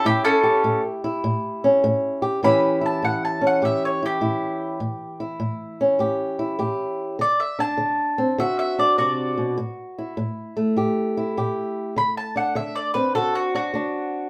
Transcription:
0.00 0.46 C#4 medium
0.05 0.60 A2 medium
0.05 1.03 E4 medium
0.05 0.25 G4 loud
0.24 0.80 C#4 medium
0.24 0.82 A4 medium
0.43 2.21 G4 medium
0.64 1.19 A2 medium
1.04 2.40 E4 medium
1.24 1.79 A2 medium
1.64 2.41 C#4 medium
1.84 2.39 A2 medium
2.22 2.40 G4 medium
2.43 2.98 A2 medium
2.43 7.19 E3 medium
2.43 3.41 C#4 medium
2.43 2.81 E4 medium
2.43 3.62 G4 medium
2.43 2.82 B5 loud
2.81 4.00 E4 medium
2.86 3.03 A5 medium
3.02 3.58 A2 medium
3.02 3.22 F#5 medium
3.25 3.42 A5 medium
3.41 4.78 C#4 medium
3.47 3.63 F#5 medium
3.62 4.17 A2 medium
3.62 4.79 G4 medium
3.62 3.82 E5 medium
3.85 4.03 C#5 medium
4.03 4.20 E4 medium
4.03 5.19 G4 medium
4.21 4.76 A2 medium
4.21 4.78 E4 medium
4.80 5.36 A2 medium
5.20 6.38 E4 medium
5.40 5.95 A2 medium
5.81 7.17 C#4 medium
5.99 6.55 A2 medium
5.99 6.58 G4 medium
6.39 7.16 E4 medium
6.59 7.14 A2 medium
6.59 7.16 G4 medium
7.19 7.74 D3 medium
7.19 7.39 D5 medium
7.40 7.58 E5 medium
7.59 8.77 D4 medium
7.59 8.36 A5 medium
7.78 8.33 D3 medium
8.18 9.55 C4 medium
8.38 8.94 D3 medium
8.38 9.58 F#4 medium
8.38 8.58 E5 medium
8.59 8.78 E5 medium
8.79 9.55 D4 medium
8.79 8.97 D5 medium
8.98 9.37 C3 medium
8.98 10.13 F#4 medium
8.98 9.56 D5 medium
9.38 9.58 B2 medium
9.58 10.13 A2 medium
9.98 11.16 E4 medium
10.17 10.72 A2 medium
10.57 12.95 A3 medium
10.77 11.32 A2 medium
10.77 11.36 G4 medium
11.17 11.94 E4 medium
11.37 11.92 A2 medium
11.37 11.94 G4 medium
11.96 12.51 D3 medium
11.96 12.16 B5 medium
12.17 12.36 A5 medium
12.36 13.53 D4 medium
12.36 12.55 F#5 medium
12.55 13.11 D3 medium
12.55 12.75 E5 medium
12.76 12.94 D5 medium
12.94 14.29 C4 medium
12.94 13.14 B4 medium
13.15 13.70 D3 medium
13.15 14.29 F#4 medium
13.15 13.34 A4 medium
13.35 13.54 F#4 medium
13.55 13.74 D4 medium
13.55 14.29 F#4 medium
13.74 14.29 D3 medium
13.74 14.29 D4 medium

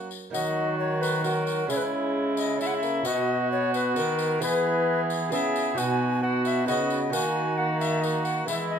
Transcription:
0.00 0.11 F#3 medium
0.00 0.29 A#3 soft
0.00 0.30 C#4 soft
0.00 0.30 F#4 soft
0.11 tambourine soft
0.30 1.66 D#3 medium
0.30 1.21 F#3 medium
0.30 1.20 A#3 medium
0.30 1.21 D#4 medium
0.30 1.22 F#4 medium
0.30 1.21 F#4 medium
0.30 0.76 D#5 loud
0.34 tambourine medium
0.79 1.03 C#5 loud
1.02 1.26 B4 loud
1.02 tambourine medium
1.21 1.71 F#3 medium
1.21 1.67 A#3 medium
1.21 1.66 D#4 medium
1.21 1.68 F#4 medium
1.21 1.69 A#4 loud
1.21 tambourine medium
1.25 1.71 F#4 medium
1.47 tambourine soft
1.67 3.03 C#3 medium
1.67 3.02 C#3 medium
1.67 2.60 G#3 medium
1.67 2.56 C#4 medium
1.67 2.57 E4 medium
1.67 2.61 E4 medium
1.67 2.58 G#4 medium
1.67 1.78 C#5 loud
1.67 tambourine medium
1.77 1.85 B4 medium
1.84 2.37 C#5 loud
2.37 2.60 D#5 loud
2.37 tambourine medium
2.58 2.85 G#3 medium
2.58 3.03 C#4 medium
2.58 3.03 E4 medium
2.58 3.08 E4 medium
2.58 3.05 G#4 medium
2.58 2.68 E5 loud
2.58 tambourine medium
2.67 2.76 F#5 medium
2.74 3.07 E5 loud
2.83 3.05 A#3 medium
2.83 tambourine soft
3.03 3.98 B2 medium
3.03 3.93 B2 medium
3.03 4.37 B3 medium
3.03 4.39 B3 medium
3.03 4.37 F#4 medium
3.03 4.42 F#4 medium
3.03 3.51 D#5 loud
3.03 tambourine medium
3.52 3.74 C#5 loud
3.74 3.96 B4 loud
3.74 tambourine medium
3.96 4.43 D#3 medium
3.96 4.39 D#3 medium
3.96 4.41 A#4 loud
3.96 tambourine soft
4.19 tambourine medium
4.39 5.34 E3 medium
4.39 5.29 E3 medium
4.39 5.31 B3 medium
4.39 5.28 E4 medium
4.39 5.29 G#4 medium
4.39 5.29 B4 medium
4.39 5.01 B4 loud
4.39 tambourine medium
4.43 5.31 G#4 medium
5.10 tambourine medium
5.29 5.77 C#3 medium
5.29 5.74 C#3 medium
5.29 5.74 E4 medium
5.29 5.75 G#4 medium
5.29 5.78 G#4 loud
5.29 5.75 B4 medium
5.29 tambourine medium
5.33 5.77 B3 medium
5.33 5.80 E5 loud
5.56 tambourine medium
5.74 6.70 B2 medium
5.74 6.64 B2 medium
5.74 6.22 B3 medium
5.74 6.63 D#4 medium
5.74 6.64 F#4 medium
5.74 6.21 F#4 medium
5.74 6.65 B4 medium
5.74 tambourine medium
5.79 6.25 G#5 loud
6.22 6.67 B3 medium
6.22 6.67 F#4 medium
6.22 6.45 F#5 loud
6.45 6.66 E5 loud
6.45 tambourine medium
6.65 7.14 C#3 medium
6.65 7.08 D#4 medium
6.65 7.09 F#4 medium
6.65 6.99 F#4 medium
6.65 7.11 B4 medium
6.65 7.15 D#5 loud
6.65 tambourine medium
6.69 7.09 C#3 medium
6.69 7.16 B3 medium
6.90 tambourine soft
7.09 8.44 D#3 medium
7.09 8.47 D#3 medium
7.09 8.43 D#4 medium
7.09 8.43 F#4 medium
7.09 7.57 F#4 medium
7.09 8.44 A#4 medium
7.09 7.59 G#5 loud
7.09 tambourine medium
7.14 7.46 A#3 medium
7.57 8.03 A#3 medium
7.57 8.02 F#4 medium
7.57 7.79 F#5 loud
7.80 8.03 E5 loud
7.80 tambourine soft
8.02 8.48 A#3 medium
8.02 8.47 F#4 medium
8.02 8.26 D#5 loud
8.02 tambourine medium
8.24 8.46 F#5 loud
8.24 tambourine soft
8.45 8.79 E3 medium
8.45 8.79 B3 medium
8.45 8.79 E4 medium
8.45 8.79 G#4 medium
8.45 8.69 E5 loud
8.45 tambourine medium
8.49 8.79 G#3 medium
8.70 8.79 D#5 medium

